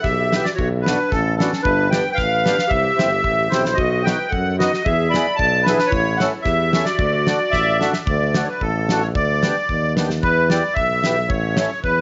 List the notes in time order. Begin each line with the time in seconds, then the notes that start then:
0.02 B1 G4 E5, kick, snare
0.33 B3 E4 G4, snare
0.43 F#4 D5, snare
0.55 F#4 C#5, kick
0.59 B1
0.82 D4 B4
0.86 B3 D4 F#4, snare
1.10 A1 C#4 A4, kick, snare
1.37 B3 C#4 D4 F#4 A4, snare
1.53 snare
1.62 G1 D4 B4, kick
1.90 B3 D4 B4 G5, snare
1.94 G4
2.09 B4 G5
2.14 B4 F5
2.18 A1, kick, snare
2.45 B3 D4 G4, snare
2.59 snare
2.67 G4 E5, kick
2.71 C2
2.97 G1 C4 E4 G4, snare
3.24 A1, kick
3.50 B1 C4 E4 G4 C5, snare
3.65 snare
3.74 B1 F#4 D#5, kick
4.03 B3 D#4 F#4 B4 G5, snare
4.28 A4 F#5
4.32 F#2, kick
4.58 B3 D#4 F#4 D#5, snare
4.74 snare
4.84 E2 G#4 E5, kick
5.10 B3 D5 B5, snare
5.15 E4 G#4
5.36 D5 A5, kick
5.40 B1
5.63 D4 B4, snare
5.68 B3 E4 G#4
5.79 snare
5.87 E4 C#5
5.92 A1, kick
6.17 F#5, snare
6.21 C#4 E4 A4
6.42 E2 G4 E5, kick, snare
6.73 C#4 E4 A4, snare
6.85 F#4 D5, snare
6.99 D2, kick
7.26 D4 F#4 A4, snare
7.51 A1 E5, kick, snare
7.80 D4 F#4 A4, snare
7.93 E5, snare
8.05 D2 D5, kick
8.34 D4 F#4 A4, snare
8.44 C#5
8.48 B4
8.61 A1 A4, kick
8.89 D4 F#4 A4, snare
9.00 C#5
9.15 D2 D5, kick
9.43 B3 D4 G4, snare
9.69 D#2, kick
9.97 B3 D4 G4, snare
10.10 snare
10.22 E2 B4, kick
10.49 B3 E4 G4 D5, snare
10.74 B1 E5, kick
11.04 B3 E4 G4, snare
11.29 A1 C#5, kick
11.57 A3 C#4 E4, snare
11.84 E2 B4, kick